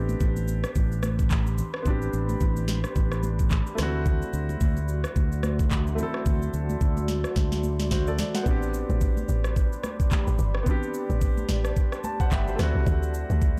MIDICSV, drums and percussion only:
0, 0, Header, 1, 2, 480
1, 0, Start_track
1, 0, Tempo, 550459
1, 1618, Time_signature, 4, 2, 24, 8
1, 11857, End_track
2, 0, Start_track
2, 0, Title_t, "Drums"
2, 78, Note_on_c, 9, 63, 73
2, 79, Note_on_c, 9, 82, 51
2, 166, Note_off_c, 9, 63, 0
2, 166, Note_off_c, 9, 82, 0
2, 177, Note_on_c, 9, 82, 71
2, 179, Note_on_c, 9, 36, 91
2, 264, Note_off_c, 9, 82, 0
2, 266, Note_off_c, 9, 36, 0
2, 318, Note_on_c, 9, 63, 60
2, 318, Note_on_c, 9, 82, 56
2, 405, Note_off_c, 9, 63, 0
2, 405, Note_off_c, 9, 82, 0
2, 418, Note_on_c, 9, 82, 82
2, 505, Note_off_c, 9, 82, 0
2, 555, Note_on_c, 9, 37, 86
2, 557, Note_on_c, 9, 82, 56
2, 642, Note_off_c, 9, 37, 0
2, 645, Note_off_c, 9, 82, 0
2, 658, Note_on_c, 9, 82, 68
2, 659, Note_on_c, 9, 36, 97
2, 745, Note_off_c, 9, 82, 0
2, 747, Note_off_c, 9, 36, 0
2, 801, Note_on_c, 9, 82, 45
2, 888, Note_off_c, 9, 82, 0
2, 896, Note_on_c, 9, 37, 84
2, 897, Note_on_c, 9, 82, 78
2, 899, Note_on_c, 9, 63, 66
2, 983, Note_off_c, 9, 37, 0
2, 984, Note_off_c, 9, 82, 0
2, 986, Note_off_c, 9, 63, 0
2, 1038, Note_on_c, 9, 36, 91
2, 1038, Note_on_c, 9, 82, 60
2, 1125, Note_off_c, 9, 36, 0
2, 1125, Note_off_c, 9, 82, 0
2, 1138, Note_on_c, 9, 82, 62
2, 1140, Note_on_c, 9, 63, 65
2, 1140, Note_on_c, 9, 64, 65
2, 1141, Note_on_c, 9, 36, 88
2, 1141, Note_on_c, 9, 39, 87
2, 1225, Note_off_c, 9, 82, 0
2, 1227, Note_off_c, 9, 63, 0
2, 1227, Note_off_c, 9, 64, 0
2, 1228, Note_off_c, 9, 36, 0
2, 1228, Note_off_c, 9, 39, 0
2, 1279, Note_on_c, 9, 82, 47
2, 1366, Note_off_c, 9, 82, 0
2, 1377, Note_on_c, 9, 82, 88
2, 1378, Note_on_c, 9, 64, 69
2, 1464, Note_off_c, 9, 82, 0
2, 1465, Note_off_c, 9, 64, 0
2, 1515, Note_on_c, 9, 37, 92
2, 1602, Note_off_c, 9, 37, 0
2, 1617, Note_on_c, 9, 82, 77
2, 1618, Note_on_c, 9, 36, 108
2, 1620, Note_on_c, 9, 64, 71
2, 1704, Note_off_c, 9, 82, 0
2, 1705, Note_off_c, 9, 36, 0
2, 1707, Note_off_c, 9, 64, 0
2, 1760, Note_on_c, 9, 82, 55
2, 1847, Note_off_c, 9, 82, 0
2, 1858, Note_on_c, 9, 82, 90
2, 1945, Note_off_c, 9, 82, 0
2, 1997, Note_on_c, 9, 63, 72
2, 1998, Note_on_c, 9, 82, 52
2, 2084, Note_off_c, 9, 63, 0
2, 2085, Note_off_c, 9, 82, 0
2, 2097, Note_on_c, 9, 82, 73
2, 2099, Note_on_c, 9, 36, 94
2, 2184, Note_off_c, 9, 82, 0
2, 2186, Note_off_c, 9, 36, 0
2, 2238, Note_on_c, 9, 63, 59
2, 2238, Note_on_c, 9, 82, 55
2, 2325, Note_off_c, 9, 63, 0
2, 2325, Note_off_c, 9, 82, 0
2, 2336, Note_on_c, 9, 38, 65
2, 2337, Note_on_c, 9, 82, 78
2, 2423, Note_off_c, 9, 38, 0
2, 2425, Note_off_c, 9, 82, 0
2, 2475, Note_on_c, 9, 37, 84
2, 2477, Note_on_c, 9, 82, 55
2, 2562, Note_off_c, 9, 37, 0
2, 2564, Note_off_c, 9, 82, 0
2, 2578, Note_on_c, 9, 82, 68
2, 2579, Note_on_c, 9, 36, 102
2, 2665, Note_off_c, 9, 82, 0
2, 2667, Note_off_c, 9, 36, 0
2, 2717, Note_on_c, 9, 37, 87
2, 2721, Note_on_c, 9, 82, 47
2, 2804, Note_off_c, 9, 37, 0
2, 2808, Note_off_c, 9, 82, 0
2, 2817, Note_on_c, 9, 82, 82
2, 2819, Note_on_c, 9, 63, 68
2, 2904, Note_off_c, 9, 82, 0
2, 2907, Note_off_c, 9, 63, 0
2, 2958, Note_on_c, 9, 36, 90
2, 2958, Note_on_c, 9, 82, 58
2, 3045, Note_off_c, 9, 36, 0
2, 3045, Note_off_c, 9, 82, 0
2, 3057, Note_on_c, 9, 82, 62
2, 3059, Note_on_c, 9, 63, 66
2, 3059, Note_on_c, 9, 64, 68
2, 3061, Note_on_c, 9, 36, 88
2, 3061, Note_on_c, 9, 39, 88
2, 3145, Note_off_c, 9, 82, 0
2, 3147, Note_off_c, 9, 63, 0
2, 3147, Note_off_c, 9, 64, 0
2, 3148, Note_off_c, 9, 36, 0
2, 3148, Note_off_c, 9, 39, 0
2, 3199, Note_on_c, 9, 82, 44
2, 3286, Note_off_c, 9, 82, 0
2, 3296, Note_on_c, 9, 82, 86
2, 3298, Note_on_c, 9, 64, 67
2, 3300, Note_on_c, 9, 37, 100
2, 3300, Note_on_c, 9, 38, 71
2, 3383, Note_off_c, 9, 82, 0
2, 3386, Note_off_c, 9, 64, 0
2, 3387, Note_off_c, 9, 37, 0
2, 3387, Note_off_c, 9, 38, 0
2, 3538, Note_on_c, 9, 36, 111
2, 3538, Note_on_c, 9, 82, 75
2, 3540, Note_on_c, 9, 64, 67
2, 3625, Note_off_c, 9, 36, 0
2, 3625, Note_off_c, 9, 82, 0
2, 3627, Note_off_c, 9, 64, 0
2, 3681, Note_on_c, 9, 82, 54
2, 3768, Note_off_c, 9, 82, 0
2, 3779, Note_on_c, 9, 82, 89
2, 3866, Note_off_c, 9, 82, 0
2, 3918, Note_on_c, 9, 63, 72
2, 3919, Note_on_c, 9, 82, 50
2, 4005, Note_off_c, 9, 63, 0
2, 4006, Note_off_c, 9, 82, 0
2, 4017, Note_on_c, 9, 82, 73
2, 4019, Note_on_c, 9, 36, 93
2, 4104, Note_off_c, 9, 82, 0
2, 4107, Note_off_c, 9, 36, 0
2, 4158, Note_on_c, 9, 63, 63
2, 4158, Note_on_c, 9, 82, 54
2, 4245, Note_off_c, 9, 63, 0
2, 4245, Note_off_c, 9, 82, 0
2, 4257, Note_on_c, 9, 82, 83
2, 4344, Note_off_c, 9, 82, 0
2, 4395, Note_on_c, 9, 37, 90
2, 4397, Note_on_c, 9, 82, 55
2, 4482, Note_off_c, 9, 37, 0
2, 4484, Note_off_c, 9, 82, 0
2, 4498, Note_on_c, 9, 82, 67
2, 4499, Note_on_c, 9, 36, 99
2, 4585, Note_off_c, 9, 82, 0
2, 4587, Note_off_c, 9, 36, 0
2, 4641, Note_on_c, 9, 82, 49
2, 4728, Note_off_c, 9, 82, 0
2, 4736, Note_on_c, 9, 37, 86
2, 4737, Note_on_c, 9, 82, 79
2, 4739, Note_on_c, 9, 63, 66
2, 4823, Note_off_c, 9, 37, 0
2, 4825, Note_off_c, 9, 82, 0
2, 4826, Note_off_c, 9, 63, 0
2, 4878, Note_on_c, 9, 36, 93
2, 4878, Note_on_c, 9, 82, 58
2, 4965, Note_off_c, 9, 36, 0
2, 4965, Note_off_c, 9, 82, 0
2, 4978, Note_on_c, 9, 82, 61
2, 4979, Note_on_c, 9, 63, 64
2, 4979, Note_on_c, 9, 64, 66
2, 4981, Note_on_c, 9, 36, 90
2, 4981, Note_on_c, 9, 39, 86
2, 5065, Note_off_c, 9, 82, 0
2, 5067, Note_off_c, 9, 63, 0
2, 5067, Note_off_c, 9, 64, 0
2, 5068, Note_off_c, 9, 36, 0
2, 5068, Note_off_c, 9, 39, 0
2, 5119, Note_on_c, 9, 82, 47
2, 5207, Note_off_c, 9, 82, 0
2, 5217, Note_on_c, 9, 82, 85
2, 5218, Note_on_c, 9, 64, 65
2, 5304, Note_off_c, 9, 82, 0
2, 5305, Note_off_c, 9, 64, 0
2, 5355, Note_on_c, 9, 37, 87
2, 5442, Note_off_c, 9, 37, 0
2, 5458, Note_on_c, 9, 36, 112
2, 5458, Note_on_c, 9, 82, 77
2, 5459, Note_on_c, 9, 64, 71
2, 5545, Note_off_c, 9, 36, 0
2, 5545, Note_off_c, 9, 82, 0
2, 5546, Note_off_c, 9, 64, 0
2, 5601, Note_on_c, 9, 82, 54
2, 5688, Note_off_c, 9, 82, 0
2, 5698, Note_on_c, 9, 82, 93
2, 5785, Note_off_c, 9, 82, 0
2, 5838, Note_on_c, 9, 63, 72
2, 5838, Note_on_c, 9, 82, 52
2, 5925, Note_off_c, 9, 63, 0
2, 5925, Note_off_c, 9, 82, 0
2, 5937, Note_on_c, 9, 82, 77
2, 5939, Note_on_c, 9, 36, 96
2, 6024, Note_off_c, 9, 82, 0
2, 6026, Note_off_c, 9, 36, 0
2, 6078, Note_on_c, 9, 63, 62
2, 6078, Note_on_c, 9, 82, 56
2, 6165, Note_off_c, 9, 63, 0
2, 6165, Note_off_c, 9, 82, 0
2, 6176, Note_on_c, 9, 38, 65
2, 6177, Note_on_c, 9, 82, 85
2, 6263, Note_off_c, 9, 38, 0
2, 6264, Note_off_c, 9, 82, 0
2, 6314, Note_on_c, 9, 37, 85
2, 6317, Note_on_c, 9, 82, 57
2, 6402, Note_off_c, 9, 37, 0
2, 6404, Note_off_c, 9, 82, 0
2, 6417, Note_on_c, 9, 82, 69
2, 6418, Note_on_c, 9, 38, 55
2, 6419, Note_on_c, 9, 36, 99
2, 6505, Note_off_c, 9, 38, 0
2, 6505, Note_off_c, 9, 82, 0
2, 6506, Note_off_c, 9, 36, 0
2, 6557, Note_on_c, 9, 38, 51
2, 6560, Note_on_c, 9, 82, 47
2, 6645, Note_off_c, 9, 38, 0
2, 6648, Note_off_c, 9, 82, 0
2, 6657, Note_on_c, 9, 82, 81
2, 6658, Note_on_c, 9, 63, 70
2, 6744, Note_off_c, 9, 82, 0
2, 6746, Note_off_c, 9, 63, 0
2, 6798, Note_on_c, 9, 38, 68
2, 6798, Note_on_c, 9, 82, 58
2, 6885, Note_off_c, 9, 38, 0
2, 6885, Note_off_c, 9, 82, 0
2, 6898, Note_on_c, 9, 82, 62
2, 6899, Note_on_c, 9, 38, 81
2, 6899, Note_on_c, 9, 63, 65
2, 6899, Note_on_c, 9, 64, 64
2, 6901, Note_on_c, 9, 36, 91
2, 6985, Note_off_c, 9, 82, 0
2, 6986, Note_off_c, 9, 38, 0
2, 6987, Note_off_c, 9, 63, 0
2, 6987, Note_off_c, 9, 64, 0
2, 6988, Note_off_c, 9, 36, 0
2, 7039, Note_on_c, 9, 82, 46
2, 7126, Note_off_c, 9, 82, 0
2, 7136, Note_on_c, 9, 82, 84
2, 7138, Note_on_c, 9, 38, 98
2, 7138, Note_on_c, 9, 64, 65
2, 7224, Note_off_c, 9, 82, 0
2, 7225, Note_off_c, 9, 64, 0
2, 7226, Note_off_c, 9, 38, 0
2, 7278, Note_on_c, 9, 38, 94
2, 7282, Note_on_c, 9, 82, 56
2, 7365, Note_off_c, 9, 38, 0
2, 7369, Note_off_c, 9, 82, 0
2, 7378, Note_on_c, 9, 36, 109
2, 7378, Note_on_c, 9, 82, 76
2, 7380, Note_on_c, 9, 64, 72
2, 7465, Note_off_c, 9, 36, 0
2, 7465, Note_off_c, 9, 82, 0
2, 7467, Note_off_c, 9, 64, 0
2, 7521, Note_on_c, 9, 82, 56
2, 7608, Note_off_c, 9, 82, 0
2, 7619, Note_on_c, 9, 82, 91
2, 7706, Note_off_c, 9, 82, 0
2, 7758, Note_on_c, 9, 63, 72
2, 7759, Note_on_c, 9, 82, 51
2, 7845, Note_off_c, 9, 63, 0
2, 7846, Note_off_c, 9, 82, 0
2, 7857, Note_on_c, 9, 82, 74
2, 7859, Note_on_c, 9, 36, 94
2, 7944, Note_off_c, 9, 82, 0
2, 7946, Note_off_c, 9, 36, 0
2, 7998, Note_on_c, 9, 63, 60
2, 7998, Note_on_c, 9, 82, 54
2, 8085, Note_off_c, 9, 63, 0
2, 8085, Note_off_c, 9, 82, 0
2, 8097, Note_on_c, 9, 82, 80
2, 8184, Note_off_c, 9, 82, 0
2, 8235, Note_on_c, 9, 37, 88
2, 8237, Note_on_c, 9, 82, 56
2, 8322, Note_off_c, 9, 37, 0
2, 8324, Note_off_c, 9, 82, 0
2, 8338, Note_on_c, 9, 82, 70
2, 8339, Note_on_c, 9, 36, 97
2, 8425, Note_off_c, 9, 82, 0
2, 8426, Note_off_c, 9, 36, 0
2, 8481, Note_on_c, 9, 82, 48
2, 8568, Note_off_c, 9, 82, 0
2, 8576, Note_on_c, 9, 37, 84
2, 8577, Note_on_c, 9, 82, 83
2, 8579, Note_on_c, 9, 63, 67
2, 8663, Note_off_c, 9, 37, 0
2, 8665, Note_off_c, 9, 82, 0
2, 8667, Note_off_c, 9, 63, 0
2, 8718, Note_on_c, 9, 36, 91
2, 8718, Note_on_c, 9, 82, 58
2, 8805, Note_off_c, 9, 36, 0
2, 8805, Note_off_c, 9, 82, 0
2, 8818, Note_on_c, 9, 82, 62
2, 8820, Note_on_c, 9, 63, 68
2, 8820, Note_on_c, 9, 64, 66
2, 8821, Note_on_c, 9, 36, 95
2, 8821, Note_on_c, 9, 39, 91
2, 8905, Note_off_c, 9, 82, 0
2, 8907, Note_off_c, 9, 63, 0
2, 8907, Note_off_c, 9, 64, 0
2, 8908, Note_off_c, 9, 36, 0
2, 8908, Note_off_c, 9, 39, 0
2, 8960, Note_on_c, 9, 82, 45
2, 9047, Note_off_c, 9, 82, 0
2, 9057, Note_on_c, 9, 82, 87
2, 9059, Note_on_c, 9, 64, 67
2, 9144, Note_off_c, 9, 82, 0
2, 9146, Note_off_c, 9, 64, 0
2, 9195, Note_on_c, 9, 37, 90
2, 9283, Note_off_c, 9, 37, 0
2, 9298, Note_on_c, 9, 36, 114
2, 9298, Note_on_c, 9, 82, 80
2, 9300, Note_on_c, 9, 64, 71
2, 9386, Note_off_c, 9, 36, 0
2, 9386, Note_off_c, 9, 82, 0
2, 9387, Note_off_c, 9, 64, 0
2, 9441, Note_on_c, 9, 82, 54
2, 9529, Note_off_c, 9, 82, 0
2, 9539, Note_on_c, 9, 82, 91
2, 9626, Note_off_c, 9, 82, 0
2, 9678, Note_on_c, 9, 63, 71
2, 9679, Note_on_c, 9, 82, 52
2, 9765, Note_off_c, 9, 63, 0
2, 9766, Note_off_c, 9, 82, 0
2, 9778, Note_on_c, 9, 82, 78
2, 9779, Note_on_c, 9, 36, 94
2, 9865, Note_off_c, 9, 82, 0
2, 9867, Note_off_c, 9, 36, 0
2, 9918, Note_on_c, 9, 63, 63
2, 9918, Note_on_c, 9, 82, 57
2, 10005, Note_off_c, 9, 63, 0
2, 10005, Note_off_c, 9, 82, 0
2, 10016, Note_on_c, 9, 38, 65
2, 10018, Note_on_c, 9, 82, 86
2, 10104, Note_off_c, 9, 38, 0
2, 10105, Note_off_c, 9, 82, 0
2, 10155, Note_on_c, 9, 37, 90
2, 10157, Note_on_c, 9, 82, 57
2, 10242, Note_off_c, 9, 37, 0
2, 10245, Note_off_c, 9, 82, 0
2, 10258, Note_on_c, 9, 82, 69
2, 10259, Note_on_c, 9, 36, 104
2, 10345, Note_off_c, 9, 82, 0
2, 10347, Note_off_c, 9, 36, 0
2, 10397, Note_on_c, 9, 37, 88
2, 10401, Note_on_c, 9, 82, 47
2, 10484, Note_off_c, 9, 37, 0
2, 10488, Note_off_c, 9, 82, 0
2, 10498, Note_on_c, 9, 82, 83
2, 10499, Note_on_c, 9, 63, 66
2, 10585, Note_off_c, 9, 82, 0
2, 10586, Note_off_c, 9, 63, 0
2, 10638, Note_on_c, 9, 36, 94
2, 10639, Note_on_c, 9, 82, 59
2, 10725, Note_off_c, 9, 36, 0
2, 10726, Note_off_c, 9, 82, 0
2, 10738, Note_on_c, 9, 82, 61
2, 10739, Note_on_c, 9, 63, 66
2, 10739, Note_on_c, 9, 64, 64
2, 10741, Note_on_c, 9, 36, 92
2, 10741, Note_on_c, 9, 39, 90
2, 10825, Note_off_c, 9, 82, 0
2, 10827, Note_off_c, 9, 63, 0
2, 10827, Note_off_c, 9, 64, 0
2, 10828, Note_off_c, 9, 36, 0
2, 10828, Note_off_c, 9, 39, 0
2, 10879, Note_on_c, 9, 82, 48
2, 10967, Note_off_c, 9, 82, 0
2, 10977, Note_on_c, 9, 82, 85
2, 10978, Note_on_c, 9, 64, 67
2, 10980, Note_on_c, 9, 37, 105
2, 10980, Note_on_c, 9, 38, 70
2, 11064, Note_off_c, 9, 82, 0
2, 11065, Note_off_c, 9, 64, 0
2, 11068, Note_off_c, 9, 37, 0
2, 11068, Note_off_c, 9, 38, 0
2, 11218, Note_on_c, 9, 36, 106
2, 11218, Note_on_c, 9, 82, 75
2, 11219, Note_on_c, 9, 64, 71
2, 11305, Note_off_c, 9, 82, 0
2, 11306, Note_off_c, 9, 36, 0
2, 11306, Note_off_c, 9, 64, 0
2, 11361, Note_on_c, 9, 82, 60
2, 11448, Note_off_c, 9, 82, 0
2, 11458, Note_on_c, 9, 82, 89
2, 11546, Note_off_c, 9, 82, 0
2, 11597, Note_on_c, 9, 63, 75
2, 11598, Note_on_c, 9, 82, 51
2, 11684, Note_off_c, 9, 63, 0
2, 11685, Note_off_c, 9, 82, 0
2, 11697, Note_on_c, 9, 82, 77
2, 11699, Note_on_c, 9, 36, 94
2, 11784, Note_off_c, 9, 82, 0
2, 11786, Note_off_c, 9, 36, 0
2, 11857, End_track
0, 0, End_of_file